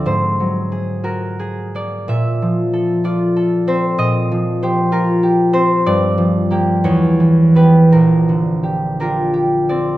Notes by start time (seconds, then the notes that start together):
Already playing: C4
0.06 G#2 C5
0.40 F#3
0.72 G#4
1.04 F#4 A#4
1.39 G#4
1.75 A#3 D5
2.08 A#2 E5
2.42 F3
2.73 A4
3.04 F4 D5
3.36 A4
3.67 C4 C5
3.98 A#2 D#5
4.32 F3
4.63 G4 C5
4.92 F4 A#4
5.23 G4
5.53 C4 C5
5.86 G2 D5
6.18 F3
6.51 A#3 G4
6.84 E2 C#5
7.20 E3
7.55 B3 G4 B4
7.92 A#1 A#4
8.29 D3
8.63 G4
9.00 D4 F4 G4 A#4
9.34 G4
9.69 C4 D5